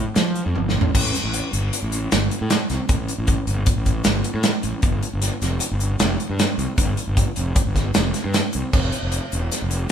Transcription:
0.16 fingered electric bass F3, snare, closed hi-hat
0.35 closed hi-hat
0.46 fingered electric bass F2
0.55 fingered electric bass G1, high tom
0.69 snare
0.75 fingered electric bass A1
0.81 floor tom
0.95 fingered electric bass A1, kick, crash
1.15 snare, closed hi-hat
1.24 fingered electric bass A1
1.34 closed hi-hat
1.53 fingered electric bass G1, closed hi-hat
1.73 closed hi-hat
1.83 fingered electric bass A1
1.92 closed hi-hat
2.12 fingered electric bass G1, snare, closed hi-hat
2.31 closed hi-hat
2.41 fingered electric bass A2
2.50 snare, closed hi-hat
2.70 fingered electric bass C2, snare, closed hi-hat
2.89 fingered electric bass A1, kick, closed hi-hat
3.08 closed hi-hat
3.18 fingered electric bass A1
3.27 kick, closed hi-hat
3.47 fingered electric bass G1, closed hi-hat
3.66 kick, closed hi-hat
3.76 fingered electric bass A1
3.86 kick, closed hi-hat
4.04 fingered electric bass G1, snare, closed hi-hat
4.24 closed hi-hat
4.34 fingered electric bass A2
4.43 snare, closed hi-hat
4.63 fingered electric bass A1, closed hi-hat
4.82 fingered electric bass G1, kick, closed hi-hat
5.03 closed hi-hat
5.13 fingered electric bass G1
5.22 snare, closed hi-hat
5.42 fingered electric bass F1, snare, closed hi-hat
5.60 closed hi-hat
5.71 fingered electric bass G1
5.80 closed hi-hat
6.00 fingered electric bass F1, snare, closed hi-hat
6.20 closed hi-hat
6.30 fingered electric bass G2
6.39 snare, closed hi-hat
6.58 fingered electric bass C2, closed hi-hat
6.78 fingered electric bass G1, kick, closed hi-hat
6.97 closed hi-hat
7.07 fingered electric bass G1
7.17 kick, closed hi-hat
7.36 fingered electric bass F1, closed hi-hat
7.56 kick, closed hi-hat
7.67 fingered electric bass G1
7.76 kick, snare, closed hi-hat
7.94 fingered electric bass F1, snare, closed hi-hat
8.14 snare, closed hi-hat
8.25 fingered electric bass G2
8.34 snare, closed hi-hat
8.53 fingered electric bass C2, closed hi-hat
8.73 fingered electric bass F1, kick, crash
8.92 closed hi-hat
9.03 fingered electric bass F1
9.12 closed hi-hat
9.32 fingered electric bass E1, closed hi-hat
9.52 snare, closed hi-hat
9.62 fingered electric bass F1
9.71 closed hi-hat

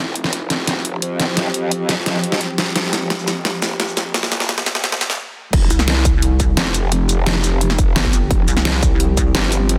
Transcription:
0.00 wobble bass F1, synth drone F3 C4 G4
0.16 closed hi-hat
0.24 snare
0.33 closed hi-hat
0.50 wobble bass F1, snare, closed hi-hat
0.67 snare, closed hi-hat
0.85 closed hi-hat
1.02 wobble bass F2, closed hi-hat
1.20 snare, closed hi-hat
1.37 snare, closed hi-hat
1.54 closed hi-hat
1.71 closed hi-hat
1.89 snare, closed hi-hat
2.06 snare, closed hi-hat
2.24 closed hi-hat
2.32 snare
2.41 closed hi-hat
2.58 snare, closed hi-hat
2.76 wobble bass F1, synth drone A#3, snare, closed hi-hat
2.93 snare, closed hi-hat, shaker
3.10 snare, closed hi-hat
3.19 shaker
3.28 wobble bass F1, snare, closed hi-hat, shaker
3.45 snare, closed hi-hat
3.62 snare, closed hi-hat, shaker
3.80 wobble bass F1, snare, closed hi-hat
3.88 shaker
3.97 snare, closed hi-hat, shaker
4.14 snare, closed hi-hat
4.23 snare
4.32 snare, closed hi-hat, shaker
4.40 snare
4.49 snare, closed hi-hat
4.58 snare, shaker
4.66 wobble bass C2, snare, closed hi-hat, shaker
4.75 snare
4.84 wobble bass C2, snare, closed hi-hat
4.92 snare, shaker
5.01 wobble bass C2, snare, closed hi-hat, shaker
5.10 snare
5.53 wobble bass F1, synth drone F3 C4 G4, kick, closed hi-hat, crash
5.70 wobble bass C2, closed hi-hat, shaker
5.79 snare
5.88 snare, closed hi-hat
6.05 kick, closed hi-hat, shaker
6.22 closed hi-hat
6.40 kick, closed hi-hat, shaker
6.57 wobble bass F1, snare, closed hi-hat
6.74 closed hi-hat, shaker
6.92 closed hi-hat
7.09 closed hi-hat, shaker
7.26 snare, closed hi-hat
7.35 snare
7.44 closed hi-hat, shaker
7.61 closed hi-hat
7.70 snare
7.79 kick, closed hi-hat, shaker
7.96 wobble bass G1, snare, closed hi-hat
8.05 kick
8.13 closed hi-hat, shaker
8.31 wobble bass F1, kick, closed hi-hat
8.48 wobble bass C2, closed hi-hat, shaker
8.57 snare
8.65 snare, closed hi-hat
8.83 kick, closed hi-hat, shaker
9.00 closed hi-hat
9.17 kick, closed hi-hat, shaker
9.35 wobble bass G1, snare, closed hi-hat
9.52 closed hi-hat, shaker
9.69 closed hi-hat

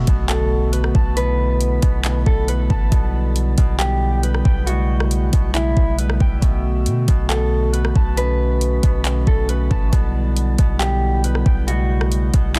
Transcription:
Already playing: pipe organ D3 A3 B3 F#4, impact
0.07 808-style bass B1, harp B2, kick, closed hi-hat
0.29 harp B2, clean electric guitar A4, clap, closed hi-hat
0.72 harp B4, closed hi-hat
0.84 cross-stick
0.95 808-style bass B1, harp A5, kick
1.16 harp B2, pipe organ E4, clean electric guitar B4, closed hi-hat
1.61 closed hi-hat
1.82 808-style bass B1, harp B2, kick, closed hi-hat
2.04 harp B2, clap, closed hi-hat
2.26 808-style bass B1, clean electric guitar A4, kick
2.48 harp B4, closed hi-hat
2.70 808-style bass A1, harp A5, kick
2.92 808-style bass B1, harp B2, pipe organ G3, kick, closed hi-hat
3.36 closed hi-hat
3.58 808-style bass B1, harp B2, kick, closed hi-hat
3.79 harp B2, clean electric guitar G4, clap, closed hi-hat
4.23 harp B4, closed hi-hat
4.34 cross-stick
4.45 808-style bass B1, harp G5, kick
4.67 harp B2, pipe organ C#3 A3 E4, clean electric guitar F#4, closed hi-hat
5.00 cross-stick
5.11 closed hi-hat
5.33 808-style bass B1, harp B2, kick, closed hi-hat
5.54 harp B2, clean electric guitar E4, clap, closed hi-hat
5.77 808-style bass B1, kick
5.98 harp B4, closed hi-hat
6.10 cross-stick
6.20 808-style bass B1, harp G5, kick
6.42 808-style bass B1, harp B2, pipe organ D3 B3 F#4, kick, closed hi-hat
6.86 808-style bass B2, closed hi-hat
7.08 808-style bass B1, harp B2, kick, closed hi-hat
7.29 harp B2, clean electric guitar A4, clap, closed hi-hat
7.73 harp B4, closed hi-hat
7.85 cross-stick
7.96 808-style bass B1, harp A5, kick
8.17 harp B2, pipe organ C#4, clean electric guitar B4, closed hi-hat
8.61 closed hi-hat
8.83 808-style bass B1, harp B2, kick, closed hi-hat
9.05 harp B2, clap, closed hi-hat
9.27 808-style bass B1, clean electric guitar A4, kick
9.49 harp B4, closed hi-hat
9.71 808-style bass A1, harp A5, kick
9.93 808-style bass B1, harp B2, pipe organ G3 B3 E4, kick, closed hi-hat
10.37 closed hi-hat
10.58 808-style bass B1, harp B2, kick, closed hi-hat
10.79 harp B2, clean electric guitar G4, clap, closed hi-hat
11.24 harp B4, closed hi-hat
11.35 cross-stick
11.46 808-style bass B1, harp G5, kick
11.67 harp B2, pipe organ C#3 A3 E4, clean electric guitar F#4, closed hi-hat
12.01 cross-stick
12.12 closed hi-hat
12.34 808-style bass B1, harp B2, kick, closed hi-hat
12.55 harp B2, clean electric guitar E4, clap, closed hi-hat

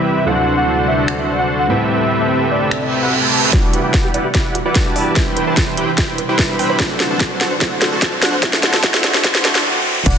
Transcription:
Already playing: grand piano C3 G3 D4 E4 B4, supersaw synth C4 E4 G4 B4 E5, soft synth lead E5
0.25 grand piano D2 F#3 A3 C4, ambient pad A3, supersaw synth D4 F#4 A4 C5 F#5, soft synth lead F#5
0.29 grand piano E4
0.57 soft synth lead F#5
0.88 soft synth lead E5
1.08 finger snap
1.19 soft synth lead E5
1.39 soft synth lead F#5
1.59 soft synth lead F#5
1.67 grand piano A2 G3 C4 E4 B4, ambient pad C3 G4 B4, supersaw synth C4 G4 A4 B4 E5
1.90 soft synth lead E5
2.21 soft synth lead E5
2.51 soft synth lead D5
2.71 finger snap, reverse cymbal
2.82 soft synth lead E5
3.02 soft synth lead F#5
3.23 soft synth lead A5
3.51 grand piano G3 B3 D4, synth arpeggio sound D4, supersaw synth E4, kick, snare, closed hi-hat, riser
3.55 grand piano F#4
3.73 synth arpeggio sound F#4, closed hi-hat
3.84 supersaw synth E4 G4 B4 D5 G5, synth arpeggio sound F#4
3.94 kick, snare, closed hi-hat
4.04 synth arpeggio sound G4
4.14 supersaw synth E4 G4 B4 D5 F#5, synth arpeggio sound D5, closed hi-hat
4.25 synth arpeggio sound G4
4.35 synth arpeggio sound D4, supersaw synth E4 G4 B4 D5 F#5, kick, snare, closed hi-hat
4.55 synth arpeggio sound F#4, closed hi-hat
4.65 supersaw synth E4 G4 B4 D5 F#5, synth arpeggio sound F#4
4.74 grand piano G3 B3 D4 F#4, kick, snare, closed hi-hat
4.86 supersaw synth E4 G4 B4 D5 A5, synth arpeggio sound G4
4.96 synth arpeggio sound D5, open hi-hat
5.06 synth arpeggio sound G4
5.14 grand piano G3 B3 D4, synth arpeggio sound E4, kick, snare, closed hi-hat
5.18 grand piano E4
5.37 synth arpeggio sound B4, closed hi-hat
5.47 supersaw synth E4 G4 B4 C5 A5, synth arpeggio sound B4
5.57 kick, snare, closed hi-hat
5.67 synth arpeggio sound C5
5.77 supersaw synth E4 G4 B4 C5 G5, synth arpeggio sound G5, closed hi-hat
5.88 synth arpeggio sound C5
5.98 synth arpeggio sound E4, supersaw synth E4 G4 B4 C5 G5, kick, snare, closed hi-hat
6.18 synth arpeggio sound B4, closed hi-hat
6.29 supersaw synth E4 G4 B4 C5 G5, synth arpeggio sound B4
6.38 grand piano G3 B3 D4 E4, kick, snare, closed hi-hat
6.49 supersaw synth E4 G4 B4 C5 B5, synth arpeggio sound C5
6.59 synth arpeggio sound G5, open hi-hat
6.70 synth arpeggio sound C5
6.78 grand piano F#3 A3 C4, ambient pad A3, synth arpeggio sound D4, kick, snare, closed hi-hat
6.82 grand piano E4
7.00 synth arpeggio sound A4, snare, closed hi-hat
7.10 supersaw synth D4 F#4 A4 C5 A5, synth arpeggio sound A4
7.20 kick, snare, closed hi-hat
7.31 synth arpeggio sound C5
7.41 supersaw synth D4 F#4 A4 C5 F#5, synth arpeggio sound F#5, snare, closed hi-hat
7.51 synth arpeggio sound C5
7.59 grand piano F#3 A3 C4, synth arpeggio sound D4, supersaw synth D4 F#4 A4 C5 F#5, kick, snare, closed hi-hat
7.63 grand piano E4
7.82 synth arpeggio sound A4, snare, closed hi-hat
7.92 supersaw synth D4 F#4 A4 C5 A5, synth arpeggio sound A4
8.02 kick, snare, closed hi-hat
8.12 synth arpeggio sound C5
8.22 supersaw synth D4 F#4 A4 C5 F#5, synth arpeggio sound F#5, snare, open hi-hat
8.33 synth arpeggio sound C5
8.41 grand piano F#3 A3 C4 E4, synth arpeggio sound D4, supersaw synth D4 F#4 A4 F#5, kick, snare, closed hi-hat
8.53 snare
8.63 synth arpeggio sound A4, snare, closed hi-hat
8.74 supersaw synth D4 F#4 A4 C5 A5, synth arpeggio sound A4, snare
8.82 grand piano F#3 A3 C4 E4, synth arpeggio sound D4, supersaw synth D4 F#4 C5 F#5, kick, snare, closed hi-hat
8.94 snare
9.04 synth arpeggio sound A4, snare, closed hi-hat
9.14 supersaw synth D4 F#4 A4 C5 A5, synth arpeggio sound A4, snare
9.23 grand piano F#3 A3 C4 E4, synth arpeggio sound D4, supersaw synth D4 F#4 A4 C5 F#5, kick, snare, closed hi-hat
9.35 snare
9.43 grand piano F#3 A3 C4, synth arpeggio sound D4, supersaw synth D4 F#4 A4 C5 F#5, snare, closed hi-hat
9.47 grand piano E4
9.55 snare
10.06 808-style bass E1, synth arpeggio sound D4, supersaw synth E4 G4 B4 D5 F#5, soft synth lead D5, digital synth lead F#5, kick, closed hi-hat, crash, impact

